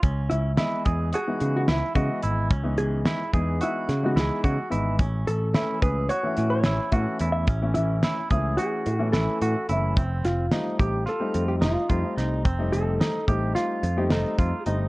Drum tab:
HH |xxxxxxxxx|xxxxxxxxx|xxxxxxxxx|xxxxxxxxx|
SD |--o---o--|--o--oo--|--o---o--|--o---o--|
BD |o--o---o-|o--o---o-|o--o---o-|o--o-----|

HH |xxxxxxxxx|xxxxxxxxx|
SD |-oo-o-o-o|--o-o-o--|
BD |o--o---o-|o--o---o-|